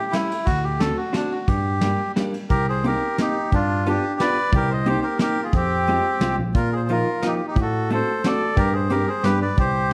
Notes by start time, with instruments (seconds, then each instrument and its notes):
Already playing: bandoneon G4
0.11 hollow-body jazz guitar G3 A3 C#4 E4, bandoneon E4, snare, ride
0.31 ride
0.45 tine electric piano D2, bandoneon F#4, kick, ride
0.64 bandoneon G4
0.79 hollow-body jazz guitar A3 C4 D4 F#4, bandoneon A4, snare, ride
0.97 bandoneon F#4
1.13 hollow-body jazz guitar A3 C4 D4 F#4, bandoneon D4, snare, ride
1.32 bandoneon F#4
1.47 tine electric piano G2, bandoneon G4, kick, ride
1.81 hollow-body jazz guitar G3 A#3 D4 G4, snare, ride
2.16 hollow-body jazz guitar G3 A#3 D4 G4, snare, ride
2.34 ride
2.50 tine electric piano C2, bandoneon G4 A#4, kick, closed hi-hat
2.69 bandoneon G#4 C5
2.84 hollow-body jazz guitar A#3 C4 D#4 G4, bandoneon G4 A#4, closed hi-hat
3.18 hollow-body jazz guitar A#3 C4 D#4 G4, bandoneon D#4 G4, snare, closed hi-hat
3.52 tine electric piano G2, bandoneon D4 F4, kick, closed hi-hat
3.86 hollow-body jazz guitar B3 D4 F4 G4, bandoneon D4 G4, closed hi-hat
4.20 hollow-body jazz guitar B3 D4 F4 G4, bandoneon B4 D5, snare, closed hi-hat
4.52 tine electric piano C2, bandoneon G4, kick, closed hi-hat
4.57 bandoneon A#4
4.71 bandoneon C5 D#5
4.86 hollow-body jazz guitar A#3 C4 D#4 G4, bandoneon G4 C5, closed hi-hat
5.02 bandoneon G4 A#4
5.19 hollow-body jazz guitar A#3 C4 D#4 G4, bandoneon G4 A#4, snare, closed hi-hat
5.43 bandoneon F4 G#4
5.53 tine electric piano F2, bandoneon C4 G4, kick, closed hi-hat
5.87 hollow-body jazz guitar G#3 C4 F4 G4, closed hi-hat
6.21 tine electric piano C2, hollow-body jazz guitar G#3 C4 F4 G4, snare, closed hi-hat
6.38 tine electric piano A#1
6.54 tine electric piano A#2, bandoneon F4 A#4, kick, closed hi-hat
6.73 bandoneon G#4 C5
6.89 hollow-body jazz guitar F3 A#3 D#4 F4, bandoneon F4 A#4, closed hi-hat
7.22 hollow-body jazz guitar F3 A#3 D#4 F4, bandoneon D#4, snare, closed hi-hat
7.28 bandoneon G4
7.36 bandoneon G4
7.47 bandoneon D#4 G4
7.55 tine electric piano A2, kick, closed hi-hat
7.60 bandoneon F#4 A4
7.90 hollow-body jazz guitar A3 C4 D4 F#4, bandoneon A4, closed hi-hat
7.94 bandoneon C5
8.24 hollow-body jazz guitar A3 C4 D4 F#4, bandoneon A4 D5, snare, closed hi-hat
8.56 tine electric piano G2, bandoneon G4 A#4, kick, closed hi-hat
8.73 bandoneon G#4 C5
8.89 hollow-body jazz guitar G3 C4 D4 G4, bandoneon G4 A#4, closed hi-hat
9.08 bandoneon G#4 C5
9.23 tine electric piano G2, hollow-body jazz guitar G3 B3 D4 G4, bandoneon G4 B4, snare, closed hi-hat
9.41 bandoneon B4 D5
9.57 tine electric piano C2, bandoneon G4 C5, kick, closed hi-hat